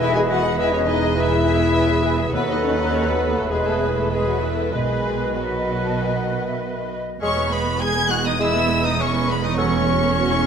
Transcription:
Already playing: D#5
0.00 E1 E2 E3 E4 G#4 B4 E5 G#5
0.13 G#4 E5 G#5
0.28 E4 F#4 B4 F#5 G#5
0.43 G#4 E5
0.57 E3 E4 G#4 B4 E5 G#5
0.72 C#4 G#4 C#5 E5
0.86 D#4 E4 B4 D#5 G#5
1.02 G#4 E5
1.16 E3 E4 G#4 B4 E5 G#5
1.30 G#4 E5
1.45 E4 B4 G#5
1.60 G#4 E5
1.75 E4 B4 C#5 G#5
1.89 G#4 E5
2.03 E4 B4 G#5
2.18 G#4 E5
2.33 D#2 F#3 B3 A4 B4 D#5 F#5
2.48 D#4 D#5
2.63 C#4 C#5
2.77 D#4 D#5
2.91 C#4 C#5
3.07 B3 B4
3.36 A3 A4
3.50 E1 E2 E3 G#3 G#4 B4 C#5 E5
3.66 A3 A4
3.80 B3 B4
3.95 A3 A4
4.10 E3 G#3 G#4 B4 E5
4.26 F#3 F#4
4.40 E3 E4 A4
4.72 B1 B2 D#3 G#3 G#4 B4 D#5
5.35 D#3 F#3 F#4 B4 D#5
5.84 A5
5.99 G#5
6.14 F#5
6.47 E5
6.60 D#5
6.76 E5
6.92 D#5
7.21 E1 E2 G#3 C#4 G#4 C#5 C#6
7.36 B3 B4
7.50 G#3 B3 G#4 B4 B5
7.65 B3 B4
7.79 G#3 G#4 G#5 G#6
7.94 B3 B4
8.08 G#3 F#4 G#4 F#5 F#6
8.24 B3 D#4 B4 D#5 D#6
8.38 G#3 E4 G#4 E5 E6
8.54 B3 B4
8.69 G#3 G#4
8.83 B3 D#4 B4 D#5 D#6
8.97 G#3 C#4 G#4 C#5 C#6
9.12 B3 B4
9.26 G#3 B3 G#4 B4 B5
9.42 B3 D#4 B4 D#5 D#6
9.56 F#3 C#4 F#4 A4 C#5 C#6
9.72 A3 E4
9.87 F#3 F#4
10.01 A3 E4
10.16 F#3 F#4
10.31 A3 E4

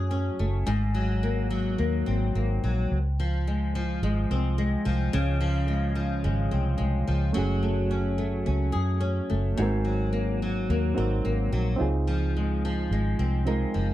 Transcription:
Already playing: F#2 F#3 A3 G#4
0.11 C#4
0.39 F#1 A3
0.67 G#1 G#2
0.95 F#3
1.23 A#3
1.50 F#3
1.78 D#2 A#3
2.06 G#1 C4
2.35 G#1 A#3
2.64 A#1 F#3
2.91 C#2
3.20 F3
3.47 G#3
3.75 F3
4.02 G#1 G#3
4.31 C2 C4
4.58 G#3
4.85 C2 F3
5.13 C#2 C#3
5.41 F3
5.68 G#3
5.95 F3
6.24 G#1 G#3
6.51 C2 C4
6.78 C2 G#3
7.07 C#2 F3
7.33 F#1 F#3 A3 C#4 F#4
7.38 G#4
7.63 A3
7.91 C#4
8.18 A3
8.46 C#2 C#4
8.72 F#2 G#4
9.00 C#4
9.30 F#1 A3
9.57 G#1 G#2 A#3 D#4 F#4
9.62 C4 A#4
9.85 F#3
10.13 A#3
10.42 F#3
10.70 D#2 A#3
10.94 G#1 C4 D#4 F#4 A#4
11.25 G#1 A#3
11.52 A#1 F#3
11.76 C4 D#4 F4
11.81 C#2 G#4
12.07 F3
12.37 G#3
12.65 F3
12.91 G#1 G#3
13.19 C2 C4
13.45 G#3 C4 D#4 F4 A#4
13.74 F#1 F3

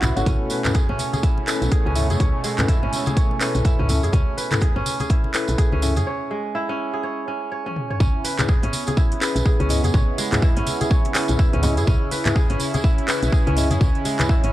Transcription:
Already playing: C#3 G#3 B3 C#4 E4 F#4 G#4 C#5
0.02 B1, clap, closed hi-hat, tambourine, muted conga, low conga
0.16 G#1 C#4 E4 F#4 A4 C#5, closed hi-hat, tambourine
0.26 C#2 B2 A3 C#4, kick, closed hi-hat, tambourine, muted conga, high conga, low conga
0.50 B4, open hi-hat, tambourine, muted conga
0.64 C#4 E4 A4 B4, clap, closed hi-hat, mid tom, tambourine, high conga, low conga
0.75 G#4, kick, closed hi-hat, tambourine
0.89 G#1 C#4, muted conga
0.98 open hi-hat, tambourine, high conga
1.13 G#4, closed hi-hat, tambourine, muted conga, high conga
1.23 E4, kick, closed hi-hat, tambourine
1.38 muted conga
1.47 C#4 E4 A4 B4, clap, open hi-hat, tambourine
1.62 B1, closed hi-hat, tambourine
1.71 G#4, kick, closed hi-hat, tambourine
1.86 C#2 C#4, high conga
1.95 C#4 E4 A4 E5, mid tom, open hi-hat, tambourine, muted conga
2.10 F#2 G#4, closed hi-hat, tambourine, high conga
2.20 C#2 C#5, kick, closed hi-hat, tambourine, muted conga, low conga
2.44 G#3, open hi-hat, tambourine, muted conga
2.58 C#4 E4 A4 B4, clap, closed hi-hat, mid tom, tambourine, high conga, low conga
2.68 E4, kick, closed hi-hat, tambourine
2.83 G#1 C#4, muted conga
2.93 open hi-hat, tambourine, high conga
3.06 G#4, closed hi-hat, tambourine, muted conga, high conga
3.17 C#5, kick, closed hi-hat, tambourine
3.31 muted conga
3.41 C#4 E4 A4 B4, clap, open hi-hat, tambourine
3.55 B1, closed hi-hat, mid tom, tambourine, high conga
3.65 E4, kick, closed hi-hat, tambourine, muted conga
3.79 C#2 C#4, mid tom
3.89 C#4 E4 A4 E5, open hi-hat, tambourine, muted conga, low conga
4.03 F#2 G#4, closed hi-hat, tambourine
4.13 C#2 C#4, kick, closed hi-hat, tambourine, muted conga, high conga, low conga
4.37 B4, open hi-hat, tambourine, muted conga
4.51 C#4 E4 A4 B4, clap, closed hi-hat, mid tom, tambourine, high conga, low conga
4.61 G#4, kick, closed hi-hat, tambourine
4.76 G#1 C#4, muted conga
4.86 open hi-hat, tambourine, high conga
5.00 G#4, closed hi-hat, tambourine, muted conga, high conga
5.09 E4, kick, closed hi-hat, tambourine
5.24 muted conga
5.34 C#4 E4 A4 B4, clap, open hi-hat, tambourine
5.48 B1, closed hi-hat, tambourine
5.58 G#4, kick, closed hi-hat, tambourine, muted conga
5.72 C#2 C#4, high conga
5.82 C#4 E4 A4 E5, mid tom, open hi-hat, tambourine, muted conga
5.96 F#2 G#4, closed hi-hat, tambourine, high conga
6.07 C#5
6.31 G#3
6.55 E4
6.69 C#4
6.94 G#4
7.03 C#5
7.28 C#4
7.52 C#5
7.66 C#4, high tom
7.76 mid tom
7.90 C#5, mid tom
8.00 C#2 C#3 B3 C#4 E4, kick, tambourine, muted conga, low conga
8.24 B4, open hi-hat, tambourine, muted conga
8.39 C#4 E4 G#4 B4, clap, closed hi-hat, mid tom, tambourine, high conga, low conga
8.48 G#4, kick, tambourine
8.63 G#1 C#4, closed hi-hat, muted conga
8.73 open hi-hat, tambourine, high conga
8.87 G#4, closed hi-hat, tambourine, muted conga, high conga
8.97 E4, kick, tambourine
9.12 closed hi-hat, muted conga
9.21 C#4 E4 G#4 B4, clap, open hi-hat, tambourine
9.36 B1, closed hi-hat, tambourine
9.45 G#4, kick, tambourine, muted conga
9.60 C#2 C#4, closed hi-hat, high conga
9.69 C#4 E4 G#4 D#5, mid tom, open hi-hat, tambourine, muted conga
9.84 F#2 G#4, closed hi-hat, tambourine, high conga
9.94 C#2 C#5, kick, tambourine, muted conga, high conga, low conga
10.18 G#3, open hi-hat, tambourine, muted conga
10.32 C#4 E4 G#4 B4, clap, closed hi-hat, mid tom, tambourine, high conga, low conga
10.42 E4, kick, tambourine
10.57 G#1 C#4, closed hi-hat, muted conga
10.67 open hi-hat, tambourine, high conga
10.81 G#4, closed hi-hat, tambourine, muted conga, high conga
10.91 C#5, kick, tambourine
11.05 closed hi-hat, muted conga
11.15 C#4 E4 G#4 B4, clap, open hi-hat, tambourine
11.28 B1, closed hi-hat, mid tom, tambourine, high conga
11.39 E4, kick, tambourine, muted conga
11.53 C#2 C#4, closed hi-hat, mid tom
11.63 C#4 E4 G#4 D#5, open hi-hat, tambourine, muted conga, low conga
11.77 F#2 G#4, closed hi-hat, tambourine
11.87 C#2 C#4, kick, tambourine, muted conga, low conga
12.11 B4, open hi-hat, tambourine, muted conga
12.25 C#4 E4 G#4 B4, clap, closed hi-hat, mid tom, tambourine, high conga, low conga
12.36 G#4, kick, tambourine
12.50 G#1 C#4, closed hi-hat, muted conga
12.59 open hi-hat, tambourine, high conga
12.74 G#4, closed hi-hat, tambourine, muted conga, high conga
12.84 E4, kick, tambourine
12.98 closed hi-hat, muted conga
13.08 C#4 E4 G#4 B4, clap, open hi-hat, tambourine
13.23 B1, closed hi-hat, tambourine
13.32 G#4, kick, tambourine, muted conga
13.47 C#2 C#4, closed hi-hat, high conga
13.56 C#4 E4 G#4 D#5, mid tom, open hi-hat, tambourine, muted conga
13.71 F#2 G#4, closed hi-hat, tambourine, high conga
13.81 C#2 C#5, kick, tambourine, muted conga, high conga, low conga
13.95 closed hi-hat
14.05 G#3, open hi-hat, tambourine, muted conga
14.19 C#4 E4 G#4 B4, clap, closed hi-hat, mid tom, tambourine, high conga, low conga
14.29 E4, kick, tambourine
14.44 G#1 C#4, closed hi-hat, muted conga

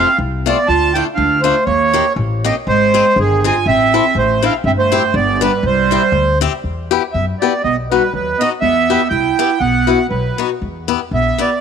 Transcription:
Already playing: C4 F5
0.18 C2
0.46 A3 B3 C4 F4 D5
0.67 D2 F4 A5
0.94 A3 D4 E4 F4 G5
1.15 D2 D4 F5
1.41 A3 D4 F4 C5
1.66 D#2 A#3 C#5
1.93 A#3 D#4 G4
2.16 A1
2.44 A#3 C4 D#4 G4 D#5
2.67 G#1 G#3 C5
2.94 C4 D#4 G#4
3.16 G1 D#3 G#4
3.44 C4 D#4 F4 G#4 G#5
3.66 A1 C4 E5
3.94 C4 E4 A4
4.15 A1 A3 C5
4.42 C4 D4 E4 A4 F5
4.64 G1 C4 E5
4.78 A3 C5
4.92 C4 E4 G4
5.14 G1 B3 D5
5.41 G3 B3 D4 G4 B4
5.63 C2 G3 C5
5.91 C4 E4 G4
6.12 D2
6.41 C4 E4 G4
6.64 E2
6.91 B3 E4 G4
7.13 F#2 B3 E5
7.40 B3 E4 G4 D5
7.64 B1 B3 D#5
7.90 G3 B3 D#4 F#4 B4
8.12 D#2 F#3 B4
8.38 B3 D#4 F#4 D#5
8.61 E2 B3 E5
8.90 B3 E4 G4
9.09 C2 E4 G5
9.39 B3 E4 G4
9.60 B1 B3 F#5
9.87 B3 E4 F#4
10.09 B1 F#3 B4
10.38 B3 D#4 F#4
10.62 E2
10.88 B3 E4 G4
11.11 A#1 B3 E5
11.38 B3 E4 G4 D5

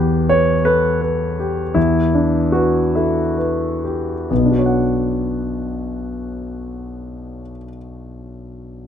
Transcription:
Already playing: E2 G4 B4
0.29 B4 C#5
0.65 A4 B4
1.01 B4
1.39 G4
1.74 E2 E4
2.15 D4
2.52 F#4 B4
2.95 E4 A4
3.38 B4
3.84 G4
4.30 B1 B3
4.38 B2
4.45 D4
4.52 F#4
4.59 C#5
4.66 F#5

